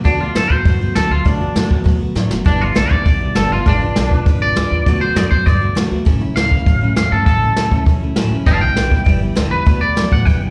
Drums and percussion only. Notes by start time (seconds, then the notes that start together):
0.05 kick, open hi-hat
0.35 snare, open hi-hat
0.50 kick
0.65 kick, open hi-hat
0.95 snare, open hi-hat
1.26 kick, open hi-hat
1.56 snare, open hi-hat
1.71 kick
1.86 kick, open hi-hat
2.16 snare
2.31 snare
2.46 kick, open hi-hat
2.76 snare, open hi-hat
2.91 kick
3.06 kick, open hi-hat
3.35 snare, open hi-hat
3.66 kick, open hi-hat
3.96 snare, open hi-hat
4.11 kick
4.26 kick, open hi-hat
4.56 snare, open hi-hat
4.86 kick, open hi-hat
5.16 snare, open hi-hat
5.32 kick
5.47 kick, open hi-hat
5.76 snare, open hi-hat
6.06 kick, open hi-hat
6.37 snare, open hi-hat
6.51 kick
6.66 kick, open hi-hat
6.96 snare, open hi-hat
7.26 kick, open hi-hat
7.56 snare, open hi-hat
7.72 kick
7.86 kick, open hi-hat
8.16 snare, open hi-hat
8.46 kick, open hi-hat
8.76 snare, open hi-hat
8.91 kick
9.06 kick, open hi-hat
9.36 snare, open hi-hat
9.67 kick, open hi-hat
9.97 snare, open hi-hat
10.12 kick
10.27 kick, open hi-hat